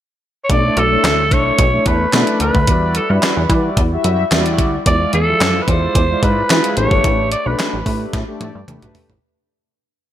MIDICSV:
0, 0, Header, 1, 5, 480
1, 0, Start_track
1, 0, Key_signature, 2, "minor"
1, 0, Tempo, 545455
1, 436, Time_signature, 4, 2, 24, 8
1, 8910, End_track
2, 0, Start_track
2, 0, Title_t, "Alto saxophone"
2, 0, Program_c, 0, 65
2, 388, Note_on_c, 0, 73, 83
2, 455, Note_on_c, 0, 74, 107
2, 468, Note_off_c, 0, 73, 0
2, 690, Note_on_c, 0, 69, 101
2, 704, Note_off_c, 0, 74, 0
2, 1169, Note_on_c, 0, 73, 103
2, 1182, Note_off_c, 0, 69, 0
2, 1643, Note_off_c, 0, 73, 0
2, 1648, Note_on_c, 0, 71, 93
2, 2089, Note_off_c, 0, 71, 0
2, 2125, Note_on_c, 0, 71, 97
2, 2609, Note_on_c, 0, 69, 86
2, 2622, Note_off_c, 0, 71, 0
2, 2731, Note_on_c, 0, 71, 78
2, 2744, Note_off_c, 0, 69, 0
2, 3207, Note_off_c, 0, 71, 0
2, 4289, Note_on_c, 0, 74, 115
2, 4506, Note_off_c, 0, 74, 0
2, 4524, Note_on_c, 0, 69, 108
2, 4945, Note_on_c, 0, 71, 81
2, 4958, Note_off_c, 0, 69, 0
2, 5005, Note_on_c, 0, 72, 101
2, 5019, Note_off_c, 0, 71, 0
2, 5486, Note_on_c, 0, 71, 96
2, 5499, Note_off_c, 0, 72, 0
2, 5958, Note_off_c, 0, 71, 0
2, 5963, Note_on_c, 0, 73, 98
2, 6407, Note_off_c, 0, 73, 0
2, 6444, Note_on_c, 0, 74, 92
2, 6571, Note_on_c, 0, 71, 82
2, 6584, Note_off_c, 0, 74, 0
2, 7047, Note_off_c, 0, 71, 0
2, 8910, End_track
3, 0, Start_track
3, 0, Title_t, "Analog polysynth"
3, 0, Program_c, 1, 90
3, 434, Note_on_c, 1, 57, 77
3, 436, Note_on_c, 1, 62, 72
3, 439, Note_on_c, 1, 64, 65
3, 442, Note_on_c, 1, 73, 81
3, 725, Note_off_c, 1, 57, 0
3, 725, Note_off_c, 1, 62, 0
3, 727, Note_off_c, 1, 64, 0
3, 728, Note_off_c, 1, 73, 0
3, 799, Note_on_c, 1, 57, 72
3, 802, Note_on_c, 1, 62, 60
3, 803, Note_on_c, 1, 64, 66
3, 805, Note_on_c, 1, 73, 83
3, 1085, Note_off_c, 1, 57, 0
3, 1086, Note_off_c, 1, 62, 0
3, 1087, Note_off_c, 1, 64, 0
3, 1088, Note_off_c, 1, 73, 0
3, 1151, Note_on_c, 1, 57, 67
3, 1153, Note_on_c, 1, 62, 62
3, 1156, Note_on_c, 1, 64, 65
3, 1158, Note_on_c, 1, 73, 75
3, 1443, Note_off_c, 1, 57, 0
3, 1444, Note_off_c, 1, 62, 0
3, 1445, Note_off_c, 1, 64, 0
3, 1446, Note_off_c, 1, 73, 0
3, 1516, Note_on_c, 1, 57, 69
3, 1517, Note_on_c, 1, 62, 65
3, 1520, Note_on_c, 1, 64, 67
3, 1522, Note_on_c, 1, 73, 79
3, 1804, Note_off_c, 1, 57, 0
3, 1804, Note_off_c, 1, 62, 0
3, 1805, Note_off_c, 1, 64, 0
3, 1806, Note_off_c, 1, 73, 0
3, 1874, Note_on_c, 1, 57, 79
3, 1877, Note_on_c, 1, 62, 73
3, 1878, Note_on_c, 1, 64, 73
3, 1879, Note_on_c, 1, 74, 82
3, 2263, Note_off_c, 1, 57, 0
3, 2264, Note_off_c, 1, 62, 0
3, 2265, Note_off_c, 1, 64, 0
3, 2266, Note_off_c, 1, 74, 0
3, 2352, Note_on_c, 1, 55, 73
3, 2354, Note_on_c, 1, 64, 75
3, 2356, Note_on_c, 1, 66, 70
3, 2360, Note_on_c, 1, 74, 88
3, 2644, Note_off_c, 1, 55, 0
3, 2644, Note_off_c, 1, 64, 0
3, 2645, Note_off_c, 1, 66, 0
3, 2647, Note_off_c, 1, 74, 0
3, 2720, Note_on_c, 1, 55, 68
3, 2721, Note_on_c, 1, 64, 69
3, 2723, Note_on_c, 1, 66, 64
3, 2726, Note_on_c, 1, 74, 79
3, 3006, Note_off_c, 1, 55, 0
3, 3006, Note_off_c, 1, 64, 0
3, 3007, Note_off_c, 1, 66, 0
3, 3008, Note_off_c, 1, 74, 0
3, 3074, Note_on_c, 1, 55, 74
3, 3078, Note_on_c, 1, 64, 63
3, 3079, Note_on_c, 1, 66, 63
3, 3083, Note_on_c, 1, 74, 82
3, 3364, Note_off_c, 1, 55, 0
3, 3367, Note_off_c, 1, 64, 0
3, 3367, Note_off_c, 1, 66, 0
3, 3369, Note_off_c, 1, 74, 0
3, 3443, Note_on_c, 1, 55, 85
3, 3445, Note_on_c, 1, 64, 75
3, 3446, Note_on_c, 1, 66, 76
3, 3450, Note_on_c, 1, 76, 97
3, 3727, Note_off_c, 1, 55, 0
3, 3728, Note_off_c, 1, 64, 0
3, 3728, Note_off_c, 1, 66, 0
3, 3730, Note_off_c, 1, 76, 0
3, 3791, Note_on_c, 1, 55, 93
3, 3794, Note_on_c, 1, 64, 91
3, 3797, Note_on_c, 1, 66, 82
3, 3800, Note_on_c, 1, 74, 99
3, 4182, Note_off_c, 1, 55, 0
3, 4183, Note_off_c, 1, 64, 0
3, 4184, Note_off_c, 1, 66, 0
3, 4186, Note_off_c, 1, 74, 0
3, 4272, Note_on_c, 1, 56, 75
3, 4274, Note_on_c, 1, 64, 64
3, 4277, Note_on_c, 1, 65, 69
3, 4280, Note_on_c, 1, 74, 81
3, 4563, Note_off_c, 1, 56, 0
3, 4565, Note_off_c, 1, 64, 0
3, 4566, Note_off_c, 1, 65, 0
3, 4567, Note_off_c, 1, 74, 0
3, 4642, Note_on_c, 1, 53, 72
3, 4644, Note_on_c, 1, 64, 70
3, 4648, Note_on_c, 1, 65, 64
3, 4650, Note_on_c, 1, 74, 76
3, 4926, Note_off_c, 1, 53, 0
3, 4928, Note_off_c, 1, 64, 0
3, 4929, Note_off_c, 1, 65, 0
3, 4930, Note_off_c, 1, 74, 0
3, 4996, Note_on_c, 1, 56, 69
3, 4998, Note_on_c, 1, 64, 62
3, 5001, Note_on_c, 1, 65, 59
3, 5003, Note_on_c, 1, 74, 77
3, 5285, Note_off_c, 1, 56, 0
3, 5287, Note_off_c, 1, 64, 0
3, 5288, Note_off_c, 1, 65, 0
3, 5289, Note_off_c, 1, 74, 0
3, 5364, Note_on_c, 1, 56, 72
3, 5367, Note_on_c, 1, 64, 64
3, 5369, Note_on_c, 1, 65, 70
3, 5372, Note_on_c, 1, 74, 79
3, 5648, Note_off_c, 1, 56, 0
3, 5649, Note_off_c, 1, 64, 0
3, 5650, Note_off_c, 1, 65, 0
3, 5651, Note_off_c, 1, 74, 0
3, 5714, Note_on_c, 1, 56, 76
3, 5717, Note_on_c, 1, 64, 65
3, 5720, Note_on_c, 1, 65, 71
3, 5721, Note_on_c, 1, 68, 86
3, 5952, Note_on_c, 1, 57, 84
3, 5955, Note_off_c, 1, 56, 0
3, 5955, Note_on_c, 1, 62, 66
3, 5957, Note_off_c, 1, 64, 0
3, 5957, Note_on_c, 1, 67, 72
3, 5958, Note_off_c, 1, 65, 0
3, 5959, Note_off_c, 1, 68, 0
3, 5960, Note_on_c, 1, 71, 79
3, 6434, Note_off_c, 1, 57, 0
3, 6436, Note_off_c, 1, 62, 0
3, 6437, Note_off_c, 1, 67, 0
3, 6438, Note_off_c, 1, 71, 0
3, 6563, Note_on_c, 1, 57, 68
3, 6565, Note_on_c, 1, 62, 72
3, 6568, Note_on_c, 1, 67, 67
3, 6569, Note_on_c, 1, 71, 87
3, 6847, Note_off_c, 1, 57, 0
3, 6848, Note_off_c, 1, 62, 0
3, 6849, Note_off_c, 1, 67, 0
3, 6850, Note_off_c, 1, 71, 0
3, 6912, Note_on_c, 1, 57, 70
3, 6914, Note_on_c, 1, 62, 64
3, 6917, Note_on_c, 1, 67, 69
3, 6919, Note_on_c, 1, 71, 76
3, 7203, Note_off_c, 1, 57, 0
3, 7204, Note_off_c, 1, 62, 0
3, 7206, Note_off_c, 1, 67, 0
3, 7207, Note_off_c, 1, 71, 0
3, 7281, Note_on_c, 1, 57, 88
3, 7283, Note_on_c, 1, 62, 72
3, 7285, Note_on_c, 1, 67, 80
3, 7289, Note_on_c, 1, 74, 97
3, 7566, Note_off_c, 1, 57, 0
3, 7567, Note_off_c, 1, 62, 0
3, 7568, Note_off_c, 1, 67, 0
3, 7570, Note_off_c, 1, 74, 0
3, 7638, Note_on_c, 1, 57, 92
3, 7639, Note_on_c, 1, 62, 84
3, 7641, Note_on_c, 1, 67, 83
3, 7644, Note_on_c, 1, 71, 93
3, 8025, Note_off_c, 1, 57, 0
3, 8025, Note_off_c, 1, 62, 0
3, 8026, Note_off_c, 1, 67, 0
3, 8028, Note_off_c, 1, 71, 0
3, 8910, End_track
4, 0, Start_track
4, 0, Title_t, "Analog synth bass"
4, 0, Program_c, 2, 38
4, 436, Note_on_c, 2, 35, 109
4, 617, Note_off_c, 2, 35, 0
4, 675, Note_on_c, 2, 35, 88
4, 857, Note_off_c, 2, 35, 0
4, 914, Note_on_c, 2, 38, 94
4, 1155, Note_on_c, 2, 35, 90
4, 1168, Note_off_c, 2, 38, 0
4, 1337, Note_off_c, 2, 35, 0
4, 1395, Note_on_c, 2, 35, 93
4, 1577, Note_off_c, 2, 35, 0
4, 1637, Note_on_c, 2, 40, 92
4, 1818, Note_off_c, 2, 40, 0
4, 1874, Note_on_c, 2, 47, 105
4, 1971, Note_off_c, 2, 47, 0
4, 2115, Note_on_c, 2, 38, 91
4, 2212, Note_off_c, 2, 38, 0
4, 2241, Note_on_c, 2, 38, 84
4, 2356, Note_on_c, 2, 40, 120
4, 2370, Note_off_c, 2, 38, 0
4, 2634, Note_off_c, 2, 40, 0
4, 2728, Note_on_c, 2, 43, 106
4, 2811, Note_off_c, 2, 43, 0
4, 2965, Note_on_c, 2, 40, 89
4, 3049, Note_off_c, 2, 40, 0
4, 3076, Note_on_c, 2, 52, 96
4, 3257, Note_off_c, 2, 52, 0
4, 3316, Note_on_c, 2, 40, 94
4, 3497, Note_off_c, 2, 40, 0
4, 3558, Note_on_c, 2, 42, 89
4, 3739, Note_off_c, 2, 42, 0
4, 3796, Note_on_c, 2, 40, 90
4, 4033, Note_on_c, 2, 38, 88
4, 4047, Note_off_c, 2, 40, 0
4, 4216, Note_off_c, 2, 38, 0
4, 4278, Note_on_c, 2, 40, 107
4, 4459, Note_off_c, 2, 40, 0
4, 4519, Note_on_c, 2, 40, 90
4, 4699, Note_off_c, 2, 40, 0
4, 4759, Note_on_c, 2, 42, 111
4, 4939, Note_off_c, 2, 42, 0
4, 4996, Note_on_c, 2, 40, 87
4, 5178, Note_off_c, 2, 40, 0
4, 5239, Note_on_c, 2, 40, 94
4, 5419, Note_off_c, 2, 40, 0
4, 5479, Note_on_c, 2, 44, 93
4, 5659, Note_off_c, 2, 44, 0
4, 5720, Note_on_c, 2, 52, 106
4, 5815, Note_off_c, 2, 52, 0
4, 5960, Note_on_c, 2, 33, 94
4, 6055, Note_off_c, 2, 33, 0
4, 6081, Note_on_c, 2, 31, 90
4, 6167, Note_off_c, 2, 31, 0
4, 6198, Note_on_c, 2, 33, 114
4, 6475, Note_off_c, 2, 33, 0
4, 6563, Note_on_c, 2, 35, 83
4, 6649, Note_off_c, 2, 35, 0
4, 6807, Note_on_c, 2, 33, 92
4, 6891, Note_off_c, 2, 33, 0
4, 6916, Note_on_c, 2, 45, 88
4, 7097, Note_off_c, 2, 45, 0
4, 7157, Note_on_c, 2, 45, 113
4, 7253, Note_off_c, 2, 45, 0
4, 7396, Note_on_c, 2, 45, 93
4, 7492, Note_off_c, 2, 45, 0
4, 7525, Note_on_c, 2, 43, 94
4, 7610, Note_off_c, 2, 43, 0
4, 7637, Note_on_c, 2, 40, 86
4, 7733, Note_off_c, 2, 40, 0
4, 7764, Note_on_c, 2, 35, 86
4, 7849, Note_off_c, 2, 35, 0
4, 8003, Note_on_c, 2, 33, 82
4, 8088, Note_off_c, 2, 33, 0
4, 8910, End_track
5, 0, Start_track
5, 0, Title_t, "Drums"
5, 436, Note_on_c, 9, 36, 99
5, 436, Note_on_c, 9, 42, 98
5, 524, Note_off_c, 9, 36, 0
5, 524, Note_off_c, 9, 42, 0
5, 676, Note_on_c, 9, 42, 69
5, 764, Note_off_c, 9, 42, 0
5, 921, Note_on_c, 9, 39, 88
5, 921, Note_on_c, 9, 42, 72
5, 924, Note_on_c, 9, 38, 98
5, 1009, Note_off_c, 9, 39, 0
5, 1009, Note_off_c, 9, 42, 0
5, 1012, Note_off_c, 9, 38, 0
5, 1156, Note_on_c, 9, 36, 93
5, 1160, Note_on_c, 9, 42, 71
5, 1244, Note_off_c, 9, 36, 0
5, 1248, Note_off_c, 9, 42, 0
5, 1395, Note_on_c, 9, 42, 90
5, 1396, Note_on_c, 9, 36, 117
5, 1483, Note_off_c, 9, 42, 0
5, 1484, Note_off_c, 9, 36, 0
5, 1635, Note_on_c, 9, 42, 76
5, 1638, Note_on_c, 9, 36, 90
5, 1723, Note_off_c, 9, 42, 0
5, 1726, Note_off_c, 9, 36, 0
5, 1877, Note_on_c, 9, 39, 76
5, 1877, Note_on_c, 9, 42, 101
5, 1879, Note_on_c, 9, 38, 105
5, 1965, Note_off_c, 9, 39, 0
5, 1965, Note_off_c, 9, 42, 0
5, 1967, Note_off_c, 9, 38, 0
5, 1999, Note_on_c, 9, 42, 56
5, 2087, Note_off_c, 9, 42, 0
5, 2112, Note_on_c, 9, 42, 76
5, 2200, Note_off_c, 9, 42, 0
5, 2241, Note_on_c, 9, 36, 92
5, 2329, Note_off_c, 9, 36, 0
5, 2354, Note_on_c, 9, 42, 92
5, 2356, Note_on_c, 9, 36, 94
5, 2442, Note_off_c, 9, 42, 0
5, 2444, Note_off_c, 9, 36, 0
5, 2593, Note_on_c, 9, 42, 73
5, 2681, Note_off_c, 9, 42, 0
5, 2841, Note_on_c, 9, 39, 83
5, 2841, Note_on_c, 9, 42, 79
5, 2844, Note_on_c, 9, 38, 96
5, 2929, Note_off_c, 9, 39, 0
5, 2929, Note_off_c, 9, 42, 0
5, 2932, Note_off_c, 9, 38, 0
5, 3077, Note_on_c, 9, 36, 90
5, 3079, Note_on_c, 9, 42, 68
5, 3165, Note_off_c, 9, 36, 0
5, 3167, Note_off_c, 9, 42, 0
5, 3318, Note_on_c, 9, 36, 114
5, 3319, Note_on_c, 9, 42, 87
5, 3406, Note_off_c, 9, 36, 0
5, 3407, Note_off_c, 9, 42, 0
5, 3558, Note_on_c, 9, 42, 70
5, 3646, Note_off_c, 9, 42, 0
5, 3800, Note_on_c, 9, 39, 86
5, 3800, Note_on_c, 9, 42, 105
5, 3802, Note_on_c, 9, 38, 102
5, 3888, Note_off_c, 9, 39, 0
5, 3888, Note_off_c, 9, 42, 0
5, 3890, Note_off_c, 9, 38, 0
5, 3923, Note_on_c, 9, 42, 55
5, 4011, Note_off_c, 9, 42, 0
5, 4035, Note_on_c, 9, 36, 81
5, 4035, Note_on_c, 9, 42, 73
5, 4123, Note_off_c, 9, 36, 0
5, 4123, Note_off_c, 9, 42, 0
5, 4277, Note_on_c, 9, 36, 99
5, 4277, Note_on_c, 9, 42, 97
5, 4365, Note_off_c, 9, 36, 0
5, 4365, Note_off_c, 9, 42, 0
5, 4514, Note_on_c, 9, 42, 65
5, 4602, Note_off_c, 9, 42, 0
5, 4763, Note_on_c, 9, 39, 87
5, 4763, Note_on_c, 9, 42, 74
5, 4765, Note_on_c, 9, 38, 112
5, 4851, Note_off_c, 9, 39, 0
5, 4851, Note_off_c, 9, 42, 0
5, 4853, Note_off_c, 9, 38, 0
5, 4996, Note_on_c, 9, 36, 90
5, 5001, Note_on_c, 9, 42, 68
5, 5084, Note_off_c, 9, 36, 0
5, 5089, Note_off_c, 9, 42, 0
5, 5238, Note_on_c, 9, 36, 107
5, 5240, Note_on_c, 9, 42, 94
5, 5326, Note_off_c, 9, 36, 0
5, 5328, Note_off_c, 9, 42, 0
5, 5480, Note_on_c, 9, 36, 85
5, 5480, Note_on_c, 9, 42, 73
5, 5568, Note_off_c, 9, 36, 0
5, 5568, Note_off_c, 9, 42, 0
5, 5722, Note_on_c, 9, 39, 79
5, 5722, Note_on_c, 9, 42, 95
5, 5724, Note_on_c, 9, 38, 104
5, 5810, Note_off_c, 9, 39, 0
5, 5810, Note_off_c, 9, 42, 0
5, 5812, Note_off_c, 9, 38, 0
5, 5843, Note_on_c, 9, 42, 56
5, 5931, Note_off_c, 9, 42, 0
5, 5956, Note_on_c, 9, 42, 66
5, 6044, Note_off_c, 9, 42, 0
5, 6082, Note_on_c, 9, 36, 88
5, 6170, Note_off_c, 9, 36, 0
5, 6197, Note_on_c, 9, 42, 89
5, 6198, Note_on_c, 9, 36, 103
5, 6285, Note_off_c, 9, 42, 0
5, 6286, Note_off_c, 9, 36, 0
5, 6438, Note_on_c, 9, 42, 70
5, 6526, Note_off_c, 9, 42, 0
5, 6683, Note_on_c, 9, 42, 76
5, 6684, Note_on_c, 9, 39, 81
5, 6686, Note_on_c, 9, 38, 98
5, 6771, Note_off_c, 9, 42, 0
5, 6772, Note_off_c, 9, 39, 0
5, 6774, Note_off_c, 9, 38, 0
5, 6917, Note_on_c, 9, 36, 87
5, 6920, Note_on_c, 9, 46, 70
5, 7005, Note_off_c, 9, 36, 0
5, 7008, Note_off_c, 9, 46, 0
5, 7158, Note_on_c, 9, 36, 109
5, 7158, Note_on_c, 9, 42, 91
5, 7165, Note_on_c, 9, 38, 59
5, 7246, Note_off_c, 9, 36, 0
5, 7246, Note_off_c, 9, 42, 0
5, 7253, Note_off_c, 9, 38, 0
5, 7398, Note_on_c, 9, 42, 72
5, 7399, Note_on_c, 9, 48, 73
5, 7486, Note_off_c, 9, 42, 0
5, 7487, Note_off_c, 9, 48, 0
5, 7638, Note_on_c, 9, 47, 83
5, 7641, Note_on_c, 9, 42, 99
5, 7726, Note_off_c, 9, 47, 0
5, 7729, Note_off_c, 9, 42, 0
5, 7766, Note_on_c, 9, 42, 56
5, 7767, Note_on_c, 9, 45, 74
5, 7854, Note_off_c, 9, 42, 0
5, 7855, Note_off_c, 9, 45, 0
5, 7874, Note_on_c, 9, 46, 76
5, 7876, Note_on_c, 9, 43, 101
5, 7962, Note_off_c, 9, 46, 0
5, 7964, Note_off_c, 9, 43, 0
5, 8004, Note_on_c, 9, 43, 88
5, 8092, Note_off_c, 9, 43, 0
5, 8910, End_track
0, 0, End_of_file